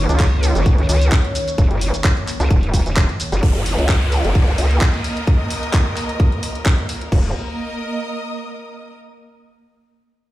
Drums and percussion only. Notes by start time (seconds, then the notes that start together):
0.09 closed hi-hat, shaker
0.20 kick, clap, closed hi-hat, shaker
0.43 open hi-hat, shaker
0.55 closed hi-hat, shaker
0.66 kick, closed hi-hat, shaker
0.78 closed hi-hat
0.89 open hi-hat, shaker
1.02 closed hi-hat, shaker
1.12 kick, clap, closed hi-hat, shaker
1.25 closed hi-hat
1.35 open hi-hat, shaker
1.48 closed hi-hat, shaker
1.58 kick, closed hi-hat, shaker
1.71 closed hi-hat
1.81 open hi-hat, shaker
1.94 closed hi-hat, shaker
2.04 kick, clap, closed hi-hat, shaker
2.17 closed hi-hat
2.27 clap, open hi-hat, shaker
2.40 closed hi-hat, shaker
2.51 kick, closed hi-hat, shaker
2.63 closed hi-hat
2.74 kick, open hi-hat, shaker
2.86 closed hi-hat, shaker
2.97 kick, clap, closed hi-hat, shaker
3.09 closed hi-hat
3.20 open hi-hat, shaker
3.32 closed hi-hat, shaker
3.43 kick, closed hi-hat
3.66 open hi-hat
3.78 closed hi-hat
3.89 kick, clap, closed hi-hat
4.12 open hi-hat
4.25 closed hi-hat
4.35 kick, closed hi-hat
4.48 closed hi-hat
4.58 open hi-hat
4.71 closed hi-hat
4.81 kick, clap, closed hi-hat
4.94 closed hi-hat
5.04 open hi-hat
5.17 closed hi-hat
5.27 kick, closed hi-hat
5.50 open hi-hat
5.63 closed hi-hat
5.74 kick, clap, closed hi-hat
5.97 clap, open hi-hat
6.09 closed hi-hat
6.20 kick, closed hi-hat
6.32 closed hi-hat
6.43 open hi-hat
6.55 closed hi-hat
6.66 kick, clap, closed hi-hat
6.78 closed hi-hat
6.89 open hi-hat
7.01 closed hi-hat
7.12 kick, crash